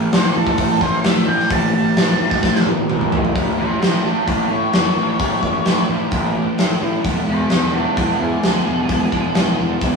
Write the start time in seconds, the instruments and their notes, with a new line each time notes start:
Already playing: overdriven electric guitar A2 E3
0.12 picked electric bass A1, overdriven electric guitar A2 F#3, lead electric guitar C5, snare, open hi-hat
0.36 picked electric bass A1, overdriven electric guitar A2 E3, lead electric guitar A4
0.47 kick
0.58 picked electric bass A1, overdriven electric guitar A2 E3, kick, open hi-hat
0.81 picked electric bass A1, overdriven electric guitar A2 E3, lead electric guitar C5, kick
1.04 picked electric bass A1, overdriven electric guitar A2 F#3, lead electric guitar E5, snare, open hi-hat
1.27 picked electric bass A1, overdriven electric guitar A2 E3, lead electric guitar G5
1.39 snare
1.50 picked electric bass A1, overdriven electric guitar A2 E3, lead electric guitar A5, kick, open hi-hat
1.74 picked electric bass A1, overdriven electric guitar A2 E3, lead electric guitar A5
1.96 picked electric bass A1, overdriven electric guitar A2 F#3, snare, open hi-hat
2.20 picked electric bass A1, overdriven electric guitar A2 E3
2.31 kick, snare
2.43 picked electric bass A1, overdriven electric guitar A2 E3, kick, snare
2.55 snare
2.65 picked electric bass A1, overdriven electric guitar A2 E3, high tom
2.77 high tom
2.89 picked electric bass A1, overdriven electric guitar A2 F#3, mid tom
3.01 mid tom
3.12 overdriven electric guitar A2 E3, floor tom
3.25 floor tom
3.35 picked electric bass A1, overdriven electric guitar A2 E3 A3 C#4 E4, kick, open hi-hat
3.57 picked electric bass A1, overdriven electric guitar A2 E3 A3 C#4 E4, lead electric guitar G4 E5
3.80 picked electric bass A1, overdriven electric guitar A2 E3 A3 C#4 E4, lead electric guitar G4 E5, snare, open hi-hat
4.03 overdriven electric guitar A2 E3 A3 C#4 E4, lead electric guitar E4 C#5
4.26 picked electric bass A1, overdriven electric guitar A2 E3 A3 C#4 E4, lead electric guitar E4 C#5, kick, open hi-hat
4.50 overdriven electric guitar A2 E3 A3 C#4 E4, picked electric bass A2, lead electric guitar C#5
4.73 picked electric bass F#1, overdriven electric guitar A2 E3 A3 C#4 E4, snare, open hi-hat
4.96 picked electric bass A1, overdriven electric guitar A2 E3 A3 C#4 E4
5.19 picked electric bass A1, overdriven electric guitar A2 E3 A3 C#4 E4, kick, open hi-hat
5.43 picked electric bass A1, overdriven electric guitar A2 E3 A3 C#4 E4, kick
5.65 picked electric bass A1, overdriven electric guitar A2 E3 A3 C#4 E4, snare, open hi-hat
5.89 picked electric bass A1, overdriven electric guitar A2 E3 A3 C#4 E4
6.11 picked electric bass A1, overdriven electric guitar A2 E3 A3 C#4 E4, kick, open hi-hat
6.36 overdriven electric guitar A2 E3 A3 C#4 E4
6.58 overdriven electric guitar A2 E3 A3 C#4 E4, picked electric bass A2, snare, open hi-hat
6.82 picked electric bass A2, overdriven electric guitar A2 E3 A3 C#4 E4
7.04 picked electric bass E1, overdriven electric guitar E3 G#3 B3 E4, kick, open hi-hat
7.27 picked electric bass E1, overdriven electric guitar E3 G#3 B3 E4, lead electric guitar G#4 E5
7.50 picked electric bass E1, overdriven electric guitar E3 G#3 B3 E4, lead electric guitar G#4 E5, snare, open hi-hat
7.73 overdriven electric guitar E3 G#3 B3 E4, lead electric guitar E4 C#5
7.97 picked electric bass E1, overdriven electric guitar E3 G#3 B3 E4, lead electric guitar E4 C#5, kick, open hi-hat
8.20 picked electric bass E2, overdriven electric guitar E3 G#3 B3 E4, lead electric guitar G#4
8.43 picked electric bass D2, overdriven electric guitar E3 G#3 B3 E4, snare, open hi-hat
8.66 picked electric bass E1, overdriven electric guitar E3 G#3 B3 E4
8.89 picked electric bass E1, overdriven electric guitar E3 G#3 B3 E4, kick, open hi-hat
9.12 picked electric bass E1, overdriven electric guitar E3 G#3 B3 E4, kick
9.35 picked electric bass E1, overdriven electric guitar E3 G#3 B3 E4, snare, open hi-hat
9.59 picked electric bass E1, overdriven electric guitar E3 G#3 B3 E4
9.81 picked electric bass E1, overdriven electric guitar E3 G#3 B3 E4, kick, open hi-hat